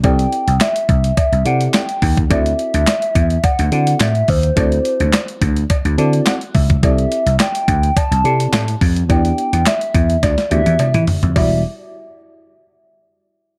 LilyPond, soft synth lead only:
\new Staff \with { instrumentName = "Soft synth lead" } { \time 4/4 \key e \minor \tempo 4 = 106 g''4 e''4 e''8 fis''16. fis''32 g''8. r16 | e''2 fis''8 fis''8 e''8 c''8~ | c''4. r2 r8 | e''4 g''4 a''4. r8 |
g''4 e''4 d''8 e''4 r8 | e''8 r2. r8 | }